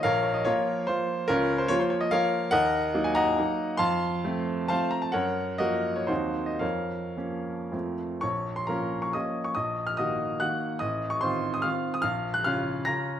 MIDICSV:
0, 0, Header, 1, 2, 480
1, 0, Start_track
1, 0, Key_signature, -5, "minor"
1, 0, Tempo, 415800
1, 61, Time_signature, 3, 2, 24, 8
1, 4382, Tempo, 450113
1, 5822, Tempo, 476948
1, 6782, Tempo, 543971
1, 8222, Tempo, 500835
1, 8702, Tempo, 454545
1, 9662, Tempo, 426743
1, 11102, Tempo, 406229
1, 14382, End_track
2, 0, Start_track
2, 0, Title_t, "Grand piano"
2, 0, Program_c, 0, 0
2, 35, Note_on_c, 0, 77, 109
2, 45, Note_on_c, 0, 73, 80
2, 48, Note_on_c, 0, 70, 87
2, 50, Note_on_c, 0, 34, 73
2, 248, Note_off_c, 0, 73, 0
2, 266, Note_on_c, 0, 73, 74
2, 278, Note_off_c, 0, 70, 0
2, 289, Note_off_c, 0, 77, 0
2, 289, Control_c, 0, 64, 127
2, 392, Note_on_c, 0, 75, 76
2, 407, Note_off_c, 0, 73, 0
2, 515, Note_on_c, 0, 73, 100
2, 527, Note_on_c, 0, 70, 70
2, 529, Note_off_c, 0, 34, 0
2, 530, Note_on_c, 0, 65, 78
2, 533, Note_off_c, 0, 75, 0
2, 537, Note_on_c, 0, 53, 61
2, 540, Note_on_c, 0, 58, 65
2, 565, Control_c, 0, 64, 0
2, 980, Note_off_c, 0, 53, 0
2, 982, Note_off_c, 0, 58, 0
2, 987, Note_off_c, 0, 70, 0
2, 988, Note_off_c, 0, 65, 0
2, 1002, Note_on_c, 0, 72, 93
2, 1015, Note_off_c, 0, 73, 0
2, 1022, Note_on_c, 0, 53, 52
2, 1025, Note_on_c, 0, 58, 49
2, 1026, Note_on_c, 0, 65, 58
2, 1446, Note_off_c, 0, 53, 0
2, 1447, Note_off_c, 0, 58, 0
2, 1448, Note_off_c, 0, 65, 0
2, 1474, Note_on_c, 0, 70, 106
2, 1482, Note_off_c, 0, 72, 0
2, 1490, Note_on_c, 0, 65, 81
2, 1492, Note_on_c, 0, 61, 79
2, 1498, Note_on_c, 0, 37, 76
2, 1706, Control_c, 0, 64, 127
2, 1824, Note_off_c, 0, 65, 0
2, 1825, Note_off_c, 0, 61, 0
2, 1828, Note_on_c, 0, 72, 82
2, 1841, Note_off_c, 0, 70, 0
2, 1944, Note_on_c, 0, 73, 113
2, 1960, Note_on_c, 0, 53, 65
2, 1962, Note_off_c, 0, 37, 0
2, 1964, Note_off_c, 0, 72, 0
2, 1965, Note_on_c, 0, 58, 64
2, 1972, Note_on_c, 0, 65, 73
2, 1988, Control_c, 0, 64, 0
2, 2069, Note_on_c, 0, 72, 76
2, 2085, Note_off_c, 0, 73, 0
2, 2193, Note_on_c, 0, 73, 83
2, 2208, Note_off_c, 0, 72, 0
2, 2315, Note_on_c, 0, 75, 87
2, 2330, Note_off_c, 0, 73, 0
2, 2411, Note_off_c, 0, 53, 0
2, 2413, Note_off_c, 0, 58, 0
2, 2416, Note_off_c, 0, 65, 0
2, 2436, Note_on_c, 0, 77, 112
2, 2448, Note_on_c, 0, 70, 84
2, 2448, Note_on_c, 0, 73, 83
2, 2450, Note_off_c, 0, 75, 0
2, 2456, Note_on_c, 0, 53, 54
2, 2458, Note_on_c, 0, 58, 54
2, 2463, Note_on_c, 0, 65, 61
2, 2879, Note_off_c, 0, 53, 0
2, 2880, Note_off_c, 0, 58, 0
2, 2883, Note_off_c, 0, 65, 0
2, 2888, Note_off_c, 0, 70, 0
2, 2888, Note_off_c, 0, 73, 0
2, 2897, Note_on_c, 0, 78, 121
2, 2911, Note_on_c, 0, 70, 88
2, 2914, Note_on_c, 0, 75, 94
2, 2916, Note_off_c, 0, 77, 0
2, 2916, Note_on_c, 0, 39, 74
2, 3150, Control_c, 0, 64, 127
2, 3387, Note_off_c, 0, 39, 0
2, 3396, Note_on_c, 0, 54, 66
2, 3400, Note_on_c, 0, 58, 64
2, 3407, Note_on_c, 0, 63, 71
2, 3481, Note_off_c, 0, 70, 0
2, 3483, Note_off_c, 0, 75, 0
2, 3512, Note_on_c, 0, 80, 85
2, 3517, Note_off_c, 0, 78, 0
2, 3635, Note_on_c, 0, 82, 114
2, 3646, Note_off_c, 0, 80, 0
2, 3649, Note_on_c, 0, 75, 85
2, 3649, Note_on_c, 0, 78, 89
2, 3848, Note_off_c, 0, 54, 0
2, 3850, Note_off_c, 0, 58, 0
2, 3854, Note_off_c, 0, 63, 0
2, 3903, Note_on_c, 0, 54, 52
2, 3909, Note_on_c, 0, 58, 53
2, 3912, Note_on_c, 0, 63, 63
2, 3917, Control_c, 0, 64, 0
2, 4333, Note_off_c, 0, 75, 0
2, 4333, Note_off_c, 0, 78, 0
2, 4338, Note_off_c, 0, 54, 0
2, 4341, Note_off_c, 0, 58, 0
2, 4343, Note_off_c, 0, 63, 0
2, 4357, Note_on_c, 0, 84, 108
2, 4372, Note_off_c, 0, 82, 0
2, 4373, Note_on_c, 0, 77, 93
2, 4374, Note_on_c, 0, 81, 97
2, 4380, Note_on_c, 0, 41, 68
2, 4627, Control_c, 0, 64, 127
2, 4846, Note_off_c, 0, 41, 0
2, 4856, Note_on_c, 0, 53, 58
2, 4862, Note_on_c, 0, 57, 62
2, 4865, Note_on_c, 0, 60, 68
2, 5306, Note_off_c, 0, 77, 0
2, 5307, Note_off_c, 0, 81, 0
2, 5308, Note_off_c, 0, 53, 0
2, 5311, Note_off_c, 0, 57, 0
2, 5312, Note_off_c, 0, 60, 0
2, 5329, Note_on_c, 0, 81, 102
2, 5342, Note_off_c, 0, 84, 0
2, 5342, Note_on_c, 0, 72, 78
2, 5342, Note_on_c, 0, 77, 84
2, 5350, Note_on_c, 0, 53, 49
2, 5356, Note_on_c, 0, 57, 50
2, 5358, Note_on_c, 0, 60, 54
2, 5361, Control_c, 0, 64, 0
2, 5567, Note_off_c, 0, 72, 0
2, 5567, Note_off_c, 0, 77, 0
2, 5567, Note_on_c, 0, 82, 84
2, 5578, Note_off_c, 0, 81, 0
2, 5685, Note_on_c, 0, 81, 80
2, 5695, Note_off_c, 0, 82, 0
2, 5778, Note_off_c, 0, 53, 0
2, 5781, Note_off_c, 0, 57, 0
2, 5782, Note_off_c, 0, 60, 0
2, 5794, Note_on_c, 0, 78, 95
2, 5808, Note_on_c, 0, 73, 76
2, 5810, Note_on_c, 0, 70, 78
2, 5812, Note_off_c, 0, 81, 0
2, 5814, Note_on_c, 0, 42, 66
2, 6033, Control_c, 0, 64, 127
2, 6245, Note_off_c, 0, 73, 0
2, 6246, Note_off_c, 0, 70, 0
2, 6262, Note_on_c, 0, 75, 93
2, 6266, Note_off_c, 0, 42, 0
2, 6271, Note_off_c, 0, 78, 0
2, 6278, Note_on_c, 0, 66, 75
2, 6278, Note_on_c, 0, 70, 73
2, 6280, Note_on_c, 0, 53, 52
2, 6282, Note_on_c, 0, 58, 54
2, 6626, Note_off_c, 0, 66, 0
2, 6626, Note_off_c, 0, 70, 0
2, 6639, Note_on_c, 0, 73, 65
2, 6645, Note_off_c, 0, 75, 0
2, 6740, Note_off_c, 0, 53, 0
2, 6741, Note_off_c, 0, 58, 0
2, 6751, Note_on_c, 0, 72, 79
2, 6763, Note_on_c, 0, 63, 58
2, 6765, Note_on_c, 0, 66, 60
2, 6768, Note_on_c, 0, 39, 54
2, 6770, Note_on_c, 0, 54, 41
2, 6774, Note_off_c, 0, 73, 0
2, 6778, Note_on_c, 0, 58, 41
2, 6779, Note_on_c, 0, 60, 39
2, 6796, Control_c, 0, 64, 0
2, 6970, Control_c, 0, 64, 127
2, 7097, Note_off_c, 0, 63, 0
2, 7098, Note_off_c, 0, 66, 0
2, 7100, Note_on_c, 0, 75, 61
2, 7117, Note_off_c, 0, 72, 0
2, 7209, Note_off_c, 0, 54, 0
2, 7212, Note_off_c, 0, 58, 0
2, 7213, Note_off_c, 0, 60, 0
2, 7216, Note_on_c, 0, 77, 72
2, 7229, Note_off_c, 0, 39, 0
2, 7229, Note_on_c, 0, 70, 58
2, 7229, Note_on_c, 0, 73, 57
2, 7231, Note_on_c, 0, 41, 54
2, 7234, Note_off_c, 0, 75, 0
2, 7266, Control_c, 0, 64, 0
2, 7468, Control_c, 0, 64, 127
2, 7714, Note_off_c, 0, 41, 0
2, 7726, Note_on_c, 0, 53, 44
2, 7731, Note_on_c, 0, 58, 43
2, 7732, Note_on_c, 0, 61, 49
2, 8182, Note_off_c, 0, 53, 0
2, 8184, Note_off_c, 0, 58, 0
2, 8185, Note_off_c, 0, 61, 0
2, 8209, Note_on_c, 0, 53, 35
2, 8214, Note_on_c, 0, 41, 50
2, 8218, Note_on_c, 0, 57, 36
2, 8222, Note_on_c, 0, 60, 37
2, 8240, Control_c, 0, 64, 0
2, 8423, Note_off_c, 0, 70, 0
2, 8423, Note_off_c, 0, 73, 0
2, 8440, Control_c, 0, 64, 127
2, 8455, Note_off_c, 0, 77, 0
2, 8657, Note_off_c, 0, 53, 0
2, 8662, Note_off_c, 0, 57, 0
2, 8664, Note_off_c, 0, 60, 0
2, 8680, Note_on_c, 0, 85, 81
2, 8684, Note_off_c, 0, 41, 0
2, 8694, Note_on_c, 0, 73, 60
2, 8698, Note_on_c, 0, 34, 56
2, 8715, Control_c, 0, 64, 0
2, 8928, Control_c, 0, 64, 127
2, 9034, Note_off_c, 0, 73, 0
2, 9048, Note_on_c, 0, 84, 74
2, 9052, Note_off_c, 0, 85, 0
2, 9162, Note_on_c, 0, 82, 74
2, 9171, Note_off_c, 0, 34, 0
2, 9178, Note_on_c, 0, 70, 52
2, 9180, Note_off_c, 0, 84, 0
2, 9182, Note_on_c, 0, 53, 51
2, 9190, Note_on_c, 0, 58, 48
2, 9190, Note_on_c, 0, 61, 53
2, 9517, Note_off_c, 0, 70, 0
2, 9533, Note_on_c, 0, 85, 71
2, 9535, Note_off_c, 0, 82, 0
2, 9618, Note_off_c, 0, 53, 0
2, 9621, Note_off_c, 0, 61, 0
2, 9622, Note_off_c, 0, 58, 0
2, 9653, Note_on_c, 0, 87, 73
2, 9656, Note_off_c, 0, 85, 0
2, 9666, Note_on_c, 0, 75, 59
2, 9669, Note_on_c, 0, 53, 37
2, 9676, Note_on_c, 0, 58, 42
2, 9678, Control_c, 0, 64, 0
2, 9679, Note_on_c, 0, 61, 45
2, 9999, Note_off_c, 0, 75, 0
2, 10002, Note_on_c, 0, 85, 72
2, 10017, Note_off_c, 0, 87, 0
2, 10098, Note_off_c, 0, 53, 0
2, 10102, Note_off_c, 0, 58, 0
2, 10103, Note_off_c, 0, 61, 0
2, 10117, Note_on_c, 0, 87, 86
2, 10130, Note_off_c, 0, 85, 0
2, 10134, Note_on_c, 0, 75, 60
2, 10136, Note_on_c, 0, 34, 56
2, 10330, Control_c, 0, 64, 127
2, 10472, Note_off_c, 0, 75, 0
2, 10476, Note_on_c, 0, 89, 80
2, 10488, Note_off_c, 0, 87, 0
2, 10595, Note_on_c, 0, 87, 85
2, 10607, Note_off_c, 0, 34, 0
2, 10608, Note_on_c, 0, 75, 65
2, 10612, Note_off_c, 0, 89, 0
2, 10616, Note_on_c, 0, 51, 48
2, 10617, Note_on_c, 0, 58, 47
2, 10621, Note_on_c, 0, 66, 56
2, 11053, Note_off_c, 0, 51, 0
2, 11054, Note_off_c, 0, 58, 0
2, 11056, Note_off_c, 0, 66, 0
2, 11060, Note_off_c, 0, 75, 0
2, 11075, Note_on_c, 0, 90, 86
2, 11087, Note_on_c, 0, 78, 65
2, 11088, Note_off_c, 0, 87, 0
2, 11096, Note_on_c, 0, 51, 43
2, 11100, Note_on_c, 0, 58, 44
2, 11101, Note_on_c, 0, 66, 45
2, 11110, Control_c, 0, 64, 0
2, 11519, Note_off_c, 0, 51, 0
2, 11522, Note_off_c, 0, 58, 0
2, 11523, Note_off_c, 0, 66, 0
2, 11529, Note_off_c, 0, 78, 0
2, 11539, Note_on_c, 0, 87, 88
2, 11552, Note_on_c, 0, 75, 70
2, 11556, Note_off_c, 0, 90, 0
2, 11560, Note_on_c, 0, 33, 61
2, 11786, Control_c, 0, 64, 127
2, 11895, Note_off_c, 0, 75, 0
2, 11904, Note_on_c, 0, 85, 82
2, 11914, Note_off_c, 0, 87, 0
2, 12030, Note_on_c, 0, 84, 82
2, 12039, Note_off_c, 0, 33, 0
2, 12045, Note_off_c, 0, 85, 0
2, 12048, Note_on_c, 0, 72, 64
2, 12052, Note_on_c, 0, 51, 52
2, 12056, Note_on_c, 0, 60, 52
2, 12062, Note_on_c, 0, 65, 60
2, 12401, Note_off_c, 0, 72, 0
2, 12419, Note_off_c, 0, 84, 0
2, 12419, Note_on_c, 0, 87, 86
2, 12502, Note_off_c, 0, 51, 0
2, 12503, Note_off_c, 0, 60, 0
2, 12507, Note_off_c, 0, 65, 0
2, 12517, Note_on_c, 0, 89, 88
2, 12533, Note_on_c, 0, 77, 66
2, 12534, Note_on_c, 0, 51, 48
2, 12544, Note_on_c, 0, 60, 46
2, 12545, Note_off_c, 0, 87, 0
2, 12548, Note_on_c, 0, 65, 47
2, 12567, Control_c, 0, 64, 0
2, 12871, Note_off_c, 0, 77, 0
2, 12888, Note_off_c, 0, 89, 0
2, 12894, Note_on_c, 0, 87, 89
2, 12967, Note_off_c, 0, 51, 0
2, 12972, Note_off_c, 0, 60, 0
2, 12974, Note_off_c, 0, 65, 0
2, 12987, Note_on_c, 0, 89, 98
2, 13005, Note_on_c, 0, 77, 71
2, 13008, Note_on_c, 0, 34, 63
2, 13017, Note_off_c, 0, 87, 0
2, 13270, Control_c, 0, 64, 127
2, 13350, Note_off_c, 0, 77, 0
2, 13366, Note_on_c, 0, 90, 91
2, 13367, Note_off_c, 0, 89, 0
2, 13489, Note_off_c, 0, 34, 0
2, 13491, Note_on_c, 0, 89, 94
2, 13502, Note_off_c, 0, 90, 0
2, 13503, Note_on_c, 0, 77, 75
2, 13508, Note_on_c, 0, 49, 60
2, 13515, Note_on_c, 0, 61, 57
2, 13516, Note_on_c, 0, 65, 64
2, 13948, Note_off_c, 0, 49, 0
2, 13952, Note_off_c, 0, 61, 0
2, 13952, Note_off_c, 0, 65, 0
2, 13959, Note_off_c, 0, 77, 0
2, 13971, Note_on_c, 0, 94, 100
2, 13987, Note_off_c, 0, 89, 0
2, 13989, Note_on_c, 0, 82, 77
2, 13996, Note_on_c, 0, 49, 48
2, 13997, Note_on_c, 0, 61, 51
2, 14002, Note_on_c, 0, 65, 51
2, 14009, Control_c, 0, 64, 0
2, 14382, Note_off_c, 0, 49, 0
2, 14382, Note_off_c, 0, 61, 0
2, 14382, Note_off_c, 0, 65, 0
2, 14382, Note_off_c, 0, 82, 0
2, 14382, Note_off_c, 0, 94, 0
2, 14382, End_track
0, 0, End_of_file